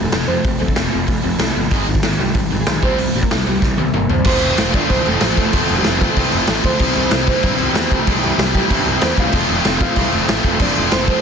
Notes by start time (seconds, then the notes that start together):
Already playing: F2 C3 F3 A3
0.04 A3 A4
0.12 F1 F2 C3 F3 A3, snare, open hi-hat
0.28 F2 C3 F3 A3 C4 C5
0.44 F1 F2 C3 F3 A3, kick, open hi-hat
0.59 D2 F2 C3 F3 A3 A4
0.68 kick
0.75 F1 F2 C3 F3 A3, snare, open hi-hat
0.91 F1 F2 C3 F3 A3
1.07 F1 F2 C3 F3 A3, kick, open hi-hat
1.22 F1 F2 C3 F3 A3
1.39 C2 F2 C3 F3 A3, snare, open hi-hat
1.54 G1 F2 C3 F3 A3
1.71 G#1 G#2 D#3 G#3, kick, open hi-hat
1.87 G#1 G#2 D#3
1.95 kick
2.02 G#1 G#2 D#3, snare, open hi-hat
2.18 C2 G#2 D#3 G3 G4
2.35 G#1 G#2 D#3, kick, open hi-hat
2.50 G#1 G#2 D#3
2.59 G#3 G#4
2.66 B1 G#2 D#3, snare, open hi-hat
2.83 C2 C3 G3 C4 C5, kick
2.98 C2 C3 G3, open hi-hat
3.14 A#1 C3 G3
3.23 A#3 A#4, kick
3.30 C2 C3 G3 A3 A4, snare, open hi-hat
3.47 C2 C3 G3 G4
3.61 C2 C3 E3 G3, kick, snare
3.65 E4
3.77 C2 C3 G3, high tom
3.93 G1 C3 G3 A#3 A#4, mid tom
4.09 C2 C3 G3 C4 C5, floor tom
4.24 F1 F3 A3 C4 C5, kick, crash
4.29 F4
4.42 F1, crash
4.58 F1, snare, crash
4.72 F3 A3 C4 F4 D5, kick, crash
4.76 D4
4.88 C2 F3 A3 C4 F4 C5, kick, crash
5.06 F1 A3 A4, crash
5.20 A1 F3 A3 C4 F4, snare, crash
5.37 F1 A3 A4, kick, crash
5.53 F1 F3 A3 C4 F4, kick, crash
5.69 F1, crash
5.78 G3 G4
5.84 F1, snare, crash
6.00 F3 A3 C4 F4 A4, kick, crash
6.16 C2 F3 A3 C4 F4, kick, crash
6.32 F1, crash
6.47 A1 F3 A3 C4 F4 A4, snare, crash
6.64 D2 C4 C5, kick, crash
6.78 C2 C3 E3 G3 C4 E4, kick, crash
6.95 C2, crash
7.11 C2, snare, crash
7.27 E3 G3 C4 E4 C5, kick, crash
7.31 C3
7.43 G2 C3 E3 G3 C4 E4, kick, crash
7.58 C2, crash
7.74 E2 C3 E3 G3 C4 E4, snare, crash
7.91 C2, kick, crash
8.00 G4
8.06 C2 C3 E3 G3 A3 C4 E4 A4, kick, crash
8.23 C2, crash
8.38 C2 G3 G4, snare, crash
8.54 C3 E3 G3 C4 E4 G4, kick, crash
8.69 G2 C3 E3 G3 C4 E4, kick, crash
8.86 C2, crash
9.01 E2 C3 E3 G3 C4 E4 C5, snare, crash
9.17 C2 F4 F5, kick, crash
9.32 F1 F3 A3 C4 F4, kick, crash
9.49 F1, crash
9.65 F1, snare, crash
9.79 F3 A3 C4 F4 F5, kick, crash
9.95 C2 F3 A3 C4 F4, kick, crash
10.12 F1, crash
10.28 A1 F3 A3 C4 F4, snare, crash
10.44 F1, kick, crash
10.59 F1 F3 A3 C4 D4 F4 D5, kick, crash
10.75 F1, crash
10.91 F1 C4 C5, snare, crash
11.06 F3 A3 C4 F4 C5, kick, crash